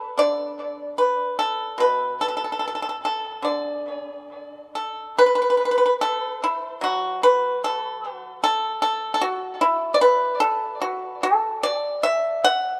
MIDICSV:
0, 0, Header, 1, 2, 480
1, 0, Start_track
1, 0, Tempo, 809717
1, 1073, Time_signature, 4, 2, 24, 8
1, 1557, Tempo, 852273
1, 2997, Tempo, 826446
1, 3957, Tempo, 801068
1, 7530, End_track
2, 0, Start_track
2, 0, Title_t, "Pipa"
2, 0, Program_c, 0, 105
2, 0, Note_on_c, 0, 69, 73
2, 96, Note_off_c, 0, 69, 0
2, 104, Note_on_c, 0, 50, 50
2, 111, Note_on_c, 0, 74, 82
2, 566, Note_off_c, 0, 74, 0
2, 582, Note_on_c, 0, 71, 64
2, 810, Note_off_c, 0, 71, 0
2, 823, Note_on_c, 0, 69, 73
2, 1051, Note_off_c, 0, 69, 0
2, 1054, Note_on_c, 0, 47, 47
2, 1069, Note_on_c, 0, 71, 71
2, 1295, Note_off_c, 0, 71, 0
2, 1311, Note_on_c, 0, 69, 65
2, 1346, Note_off_c, 0, 69, 0
2, 1404, Note_on_c, 0, 69, 47
2, 1441, Note_off_c, 0, 69, 0
2, 1448, Note_on_c, 0, 69, 43
2, 1489, Note_off_c, 0, 69, 0
2, 1495, Note_on_c, 0, 69, 44
2, 1530, Note_off_c, 0, 69, 0
2, 1537, Note_on_c, 0, 69, 40
2, 1551, Note_off_c, 0, 50, 0
2, 1577, Note_off_c, 0, 69, 0
2, 1584, Note_on_c, 0, 69, 45
2, 1621, Note_off_c, 0, 69, 0
2, 1627, Note_on_c, 0, 69, 39
2, 1661, Note_off_c, 0, 69, 0
2, 1668, Note_on_c, 0, 69, 50
2, 1699, Note_off_c, 0, 69, 0
2, 1706, Note_on_c, 0, 69, 42
2, 1745, Note_off_c, 0, 69, 0
2, 1795, Note_on_c, 0, 69, 60
2, 2006, Note_on_c, 0, 50, 44
2, 2011, Note_off_c, 0, 69, 0
2, 2015, Note_off_c, 0, 47, 0
2, 2019, Note_on_c, 0, 74, 53
2, 2486, Note_off_c, 0, 74, 0
2, 2754, Note_on_c, 0, 69, 52
2, 2978, Note_off_c, 0, 69, 0
2, 2998, Note_on_c, 0, 71, 83
2, 3036, Note_off_c, 0, 71, 0
2, 3043, Note_on_c, 0, 71, 57
2, 3083, Note_off_c, 0, 71, 0
2, 3095, Note_on_c, 0, 71, 66
2, 3126, Note_off_c, 0, 71, 0
2, 3133, Note_on_c, 0, 71, 51
2, 3172, Note_off_c, 0, 71, 0
2, 3181, Note_on_c, 0, 71, 52
2, 3216, Note_off_c, 0, 71, 0
2, 3223, Note_on_c, 0, 71, 45
2, 3262, Note_off_c, 0, 71, 0
2, 3269, Note_on_c, 0, 71, 54
2, 3297, Note_off_c, 0, 71, 0
2, 3304, Note_on_c, 0, 71, 47
2, 3335, Note_off_c, 0, 71, 0
2, 3342, Note_on_c, 0, 71, 57
2, 3381, Note_off_c, 0, 71, 0
2, 3388, Note_on_c, 0, 71, 55
2, 3432, Note_off_c, 0, 71, 0
2, 3472, Note_off_c, 0, 50, 0
2, 3479, Note_on_c, 0, 69, 82
2, 3703, Note_off_c, 0, 69, 0
2, 3725, Note_on_c, 0, 64, 75
2, 3941, Note_off_c, 0, 64, 0
2, 3943, Note_on_c, 0, 54, 57
2, 3957, Note_on_c, 0, 66, 73
2, 4180, Note_off_c, 0, 66, 0
2, 4195, Note_on_c, 0, 71, 86
2, 4421, Note_off_c, 0, 71, 0
2, 4440, Note_on_c, 0, 69, 75
2, 4746, Note_off_c, 0, 69, 0
2, 4746, Note_on_c, 0, 66, 75
2, 4893, Note_off_c, 0, 66, 0
2, 4916, Note_on_c, 0, 69, 95
2, 5135, Note_off_c, 0, 69, 0
2, 5146, Note_on_c, 0, 69, 76
2, 5331, Note_off_c, 0, 69, 0
2, 5338, Note_on_c, 0, 69, 63
2, 5381, Note_off_c, 0, 54, 0
2, 5382, Note_on_c, 0, 66, 85
2, 5383, Note_off_c, 0, 69, 0
2, 5605, Note_off_c, 0, 66, 0
2, 5620, Note_on_c, 0, 64, 81
2, 5807, Note_off_c, 0, 64, 0
2, 5818, Note_on_c, 0, 74, 67
2, 5858, Note_off_c, 0, 74, 0
2, 5861, Note_on_c, 0, 71, 87
2, 6087, Note_off_c, 0, 71, 0
2, 6093, Note_on_c, 0, 69, 94
2, 6324, Note_off_c, 0, 69, 0
2, 6341, Note_on_c, 0, 66, 78
2, 6569, Note_off_c, 0, 66, 0
2, 6591, Note_on_c, 0, 69, 89
2, 6815, Note_off_c, 0, 69, 0
2, 6832, Note_on_c, 0, 74, 103
2, 7056, Note_off_c, 0, 74, 0
2, 7071, Note_on_c, 0, 76, 91
2, 7296, Note_off_c, 0, 76, 0
2, 7318, Note_on_c, 0, 78, 107
2, 7530, Note_off_c, 0, 78, 0
2, 7530, End_track
0, 0, End_of_file